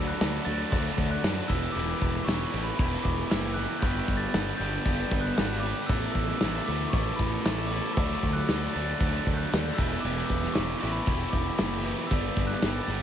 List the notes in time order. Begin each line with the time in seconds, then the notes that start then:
Already playing: D2 D3 F#3 A3 D4 F#4
0.07 F#6
0.20 D2 D3 F#3 A3 D4 F#4, snare, crash
0.45 D2 D3 F#3 A3 D4 F#4 A6, crash
0.71 D2 D3 F#3 A3 D4 F#4, kick, crash
0.97 D2, kick, crash
1.11 F#6
1.23 F#2 D3 F#3 A3 D4 F#4, snare, crash
1.48 E1 E3 B3 E4 G4 E6, kick, crash
1.72 E3 D6, crash
1.76 E1 B3 E4 G4
2.02 E1, kick, crash
2.25 E1 E3 B3 C#6, snare, crash
2.29 E4 G4
2.52 A1 E3 B3 E4 G4, crash
2.64 B5
2.76 E1 E3 B3 E4 B5, kick, crash
2.80 G4
3.03 E1 D6, kick, crash
3.30 F#1 E3 B3 E4 G4 E6, snare, crash
3.54 E3 B3 F#6, crash
3.59 E4 G4
3.79 G1 G3 B3 D4 G6, kick, crash
3.85 G4
4.08 G1, kick, crash
4.17 A6
4.34 G1 G3 B3 D4 G4, snare, crash
4.58 G1 G3 B3 G6, crash
4.62 D4 G4
4.85 G1 G3 B3 D4 G4, kick, crash
5.11 G1, kick, crash
5.21 F#6
5.37 G#1 G3 B3 D4 G4, snare, crash
5.60 G3 D6, crash
5.65 B3 D4 G4
5.86 A1 A3 B3 E4 E6, kick, crash
5.91 A4
6.12 A1 E6, kick, crash
6.28 snare
6.40 A1 A3 B3 E4, snare, crash
6.45 A4
6.66 D2 A3 B3 D6, crash
6.70 E4 A4
6.90 A1 C#6, kick, crash
6.94 A3 B3 E4 A4
7.16 A1 B5, kick, crash
7.45 A1 A3 B3 E4 A4, snare, crash
7.67 D6
7.71 A3 B3 E4 A4, crash
7.94 D2 D3 F#3 D4 E6, kick, crash
7.99 A3 A4
8.23 D2, kick, crash
8.33 F#6, snare
8.48 D2 D3 F#3 A3 D4 A4, snare, crash
8.73 D2 D3 F#3 A3 D4 A4 A6, crash
9.00 D2 D3 F#3 A3 D4 A4, kick, crash
9.27 D2, kick, crash
9.34 F#6 G6
9.51 D#2 D3 F#3 A3 D4 A4, snare, crash
9.75 E1 E3 B3 E6, kick
9.79 E4 G4, crash
10.00 E1 E3 B3 G4 D6
10.04 E4, crash
10.26 E1 D6, kick, crash
10.43 snare
10.53 E1 E3 B3 C#6, snare, crash
10.58 E4 G4
10.81 A1 E3 B3 E4 G4, crash
10.92 B5
11.05 E1 E3 B3 E4 B5, kick, crash
11.10 G4
11.31 E1 D6, kick, crash
11.58 F#1 E3 B3 E4 G4, snare, crash
11.81 E3 B3 E4 G4 D6
11.86 crash
12.07 G3 B3 D4 E6
12.11 G1 G4, kick, crash
12.37 G1, kick, crash
12.47 F#6, snare
12.62 G1 G3 B3 D4 G4, snare, crash
12.83 A6
12.88 G1 G3 B3 D4 G4, crash